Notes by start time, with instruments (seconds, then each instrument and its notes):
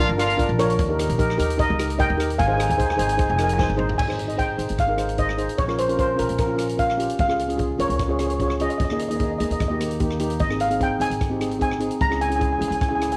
Already playing: steel pan D4
0.00 steel pan F4 A#4
0.09 upright bass G1
0.18 steel pan D4 F4 A#4, horn section F4 F5, cross-stick, closed hi-hat
0.30 closed hi-hat
0.37 steel pan D4 F4 A#4, kick, closed hi-hat
0.49 upright bass A#1
0.58 steel pan D4 F4 A#4 C#5, cross-stick, closed hi-hat
0.70 closed hi-hat
0.79 upright bass D#2, kick, closed hi-hat
0.89 steel pan D#4 G4 A#4
0.99 steel pan D#4 G4 A#4, cross-stick, closed hi-hat
1.09 upright bass A#1, closed hi-hat
1.18 steel pan D#4 G4 A#4, kick, closed hi-hat
1.30 cross-stick
1.38 upright bass D#2, steel pan D#4 G4 A#4, closed hi-hat
1.50 closed hi-hat
1.58 steel pan D#4 G4 A#4 D#5, kick, closed hi-hat
1.70 upright bass C#2
1.79 steel pan D#4 G4 A#4, cross-stick, closed hi-hat
1.90 closed hi-hat
1.98 steel pan D#4 G4 A#4 D#5 G5, kick, closed hi-hat
2.10 upright bass D#2
2.17 steel pan D#4 G4 A#4, cross-stick, closed hi-hat
2.30 closed hi-hat
2.38 upright bass G#1, steel pan F5 G#5, kick, closed hi-hat
2.47 steel pan D#4 G#4 C5 G#5
2.53 steel pan D#4 G#4 G#5
2.58 steel pan C5, cross-stick, closed hi-hat
2.63 steel pan G#5
2.69 upright bass D#2, steel pan G#5, closed hi-hat
2.77 steel pan D#4 G#4 C5 G#5, kick, closed hi-hat
2.86 steel pan G#5
2.90 steel pan G#5, cross-stick
2.97 upright bass G#1, steel pan D#4 G#4 C5 G#5, closed hi-hat
3.07 steel pan G#5, closed hi-hat
3.13 steel pan G#5
3.17 steel pan D#4 G#4 C5, kick, closed hi-hat
3.21 steel pan G#5
3.30 upright bass F1, steel pan G#5
3.37 steel pan D#4 G#4 A#4 G#5, cross-stick, closed hi-hat
3.44 steel pan G#5
3.49 closed hi-hat
3.54 steel pan G#5
3.58 steel pan D#4 G#4 C5 G#5, kick, snare
3.70 upright bass G#1
3.77 steel pan D#4 G#4 C5, mid tom
3.89 floor tom
3.98 upright bass G#1, steel pan G#5, kick, crash
4.08 steel pan D#4 G#4 C5, cross-stick
4.19 closed hi-hat
4.27 steel pan D#4 G#4 D#5, closed hi-hat
4.37 steel pan D#4 G#4 C5 G5, kick, closed hi-hat
4.58 upright bass G#1, steel pan D#4 G#4 C5, closed hi-hat
4.69 upright bass G#1, closed hi-hat
4.78 steel pan F5, kick, cross-stick, closed hi-hat
4.88 steel pan D#4 G#4 A#4
4.97 steel pan D#4 G#4 C5, cross-stick, closed hi-hat
5.09 closed hi-hat
5.17 steel pan D#4 G#4 C5 D#5, kick, closed hi-hat
5.29 cross-stick
5.37 steel pan D#4 G#4 C5, closed hi-hat
5.49 closed hi-hat
5.58 upright bass A#1, steel pan C#5, kick, closed hi-hat
5.67 steel pan C#4 F4 A#4, cross-stick
5.78 steel pan C5, closed hi-hat
5.88 steel pan C#4 F4 A#4, closed hi-hat
5.96 steel pan C#4 F4 A#4 C5, kick, closed hi-hat
6.16 upright bass A#1, steel pan C#4 F4 A#4, closed hi-hat
6.29 upright bass A#1, closed hi-hat
6.38 steel pan A#4, kick, cross-stick, closed hi-hat
6.47 steel pan C#4 F4 A#4
6.56 steel pan C#4 F4 A#4, cross-stick, closed hi-hat
6.69 closed hi-hat
6.77 steel pan C#4 F4 A#4 F5, kick, closed hi-hat
6.90 cross-stick
6.97 steel pan C#4 F4 G4, closed hi-hat
7.10 closed hi-hat
7.19 upright bass C#2, steel pan F5, kick, closed hi-hat
7.28 steel pan C#4 F4 G#4, cross-stick
7.39 closed hi-hat
7.49 steel pan C#4 F4 G#4, closed hi-hat
7.56 steel pan C#4 F4 G#4, kick, closed hi-hat
7.78 upright bass C#2, steel pan C#4 F4 A#4 C#5, closed hi-hat
7.88 upright bass C#2, steel pan C#5, closed hi-hat
7.96 steel pan C#5, kick, cross-stick, closed hi-hat
8.03 steel pan C#5
8.08 steel pan C#4 F4 G#4 C#5
8.19 steel pan C#4 F4 G#4 C#5, cross-stick, closed hi-hat
8.27 steel pan C#5, closed hi-hat
8.34 steel pan C#5
8.40 steel pan C#4 F4 G#4 C#5, kick, closed hi-hat
8.48 steel pan C#5, cross-stick
8.60 steel pan C#4 F4 G#4 D#5, closed hi-hat
8.70 steel pan D#5, closed hi-hat
8.78 upright bass D#2, steel pan D#5, kick, closed hi-hat
8.85 steel pan D#5
8.90 steel pan A#3 D#4 G#4 D#5, cross-stick
8.99 steel pan D#5, closed hi-hat
9.09 steel pan A#3 D#4 G#4 D#5, closed hi-hat
9.16 steel pan A#3 D#4 G#4 D#5, kick, closed hi-hat
9.23 steel pan D#5
9.32 steel pan D#5
9.38 upright bass D#2, steel pan A#3 D#4 G#4 D#5, closed hi-hat
9.44 steel pan D#5
9.50 upright bass D#2, steel pan D#5, closed hi-hat
9.60 upright bass D#2, steel pan D#5, kick, cross-stick, closed hi-hat
9.68 steel pan A#3 D#4 G4 D#5
9.80 steel pan A#3 D#4 G4, cross-stick, closed hi-hat
9.91 closed hi-hat
10.00 steel pan A#3 D#4 G4, kick, closed hi-hat
10.10 cross-stick
10.19 steel pan A#3 D#4 G4, closed hi-hat
10.30 closed hi-hat
10.39 upright bass G#1, steel pan D#5, kick, closed hi-hat
10.49 steel pan C4 D#4 G#4, cross-stick
10.60 steel pan F5, closed hi-hat
10.70 steel pan C4 D#4 G#4, closed hi-hat
10.80 steel pan C4 D#4 G#4 G5, kick, closed hi-hat
10.99 upright bass G#1, steel pan C4 D#4 G#4 G#5, closed hi-hat
11.10 upright bass G#1, closed hi-hat
11.21 kick, cross-stick, closed hi-hat
11.30 steel pan C4 D#4 G4
11.39 steel pan C4 D#4 G#4, cross-stick, closed hi-hat
11.51 closed hi-hat
11.58 steel pan C4 D#4 G#4 G#5, kick, closed hi-hat
11.71 cross-stick
11.79 steel pan C4 D#4 G#4, closed hi-hat
11.91 closed hi-hat
12.01 upright bass C#2, steel pan A#5, kick, closed hi-hat
12.09 steel pan C#4 E4 G#4, cross-stick
12.21 steel pan G#5, closed hi-hat
12.29 steel pan C#4 E4 G#4 G#5, closed hi-hat
12.36 steel pan C#4 E4 G#4 G#5
12.41 steel pan G#5, kick, closed hi-hat
12.52 steel pan G#5
12.58 upright bass C#2, steel pan C#4 E4 G#4 G#5, closed hi-hat
12.68 upright bass C#2, steel pan G#5, closed hi-hat
12.75 steel pan G#5
12.81 steel pan G#5, kick, cross-stick, closed hi-hat
12.89 steel pan C#4 E4 G#4 G#5
12.95 steel pan C#4 G#5
13.00 steel pan E4 G#4 G#5, cross-stick, closed hi-hat
13.12 steel pan G#5, closed hi-hat